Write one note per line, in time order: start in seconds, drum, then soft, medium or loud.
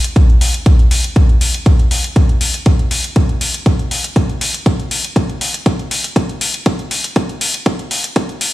0.04 closed hi-hat medium
0.16 kick loud
0.16 closed hi-hat medium
0.29 closed hi-hat soft
0.41 open hi-hat loud
0.54 closed hi-hat soft
0.66 kick loud
0.66 closed hi-hat medium
0.79 closed hi-hat soft
0.91 open hi-hat medium
1.04 closed hi-hat medium
1.16 kick loud
1.16 closed hi-hat medium
1.29 closed hi-hat soft
1.41 open hi-hat loud
1.54 closed hi-hat medium
1.66 kick loud
1.66 closed hi-hat medium
1.79 closed hi-hat soft
1.91 open hi-hat loud
2.04 closed hi-hat soft
2.16 kick loud
2.16 closed hi-hat medium
2.29 closed hi-hat soft
2.41 open hi-hat loud
2.54 closed hi-hat medium
2.66 kick loud
2.66 closed hi-hat medium
2.79 closed hi-hat soft
2.91 open hi-hat medium
3.04 closed hi-hat soft
3.16 kick loud
3.16 closed hi-hat medium
3.29 closed hi-hat soft
3.41 open hi-hat loud
3.54 closed hi-hat soft
3.66 kick loud
3.66 closed hi-hat soft
3.79 closed hi-hat soft
3.91 open hi-hat loud
4.04 closed hi-hat medium
4.16 kick loud
4.16 closed hi-hat medium
4.29 closed hi-hat soft
4.41 open hi-hat loud
4.54 closed hi-hat soft
4.66 kick loud
4.66 closed hi-hat medium
4.80 closed hi-hat soft
4.91 open hi-hat medium
5.05 closed hi-hat soft
5.16 kick loud
5.16 closed hi-hat soft
5.30 closed hi-hat soft
5.41 open hi-hat loud
5.54 closed hi-hat soft
5.66 kick loud
5.66 closed hi-hat medium
5.79 closed hi-hat soft
5.91 open hi-hat loud
6.04 closed hi-hat medium
6.16 kick loud
6.16 closed hi-hat medium
6.29 closed hi-hat soft
6.41 open hi-hat loud
6.54 closed hi-hat medium
6.66 kick loud
6.66 closed hi-hat medium
6.79 closed hi-hat soft
6.91 open hi-hat medium
7.04 closed hi-hat medium
7.16 kick loud
7.16 closed hi-hat medium
7.29 closed hi-hat soft
7.41 open hi-hat loud
7.54 closed hi-hat soft
7.66 kick loud
7.66 closed hi-hat medium
7.79 closed hi-hat soft
7.91 open hi-hat medium
8.04 closed hi-hat medium
8.16 kick loud
8.16 closed hi-hat medium
8.29 closed hi-hat soft
8.41 open hi-hat loud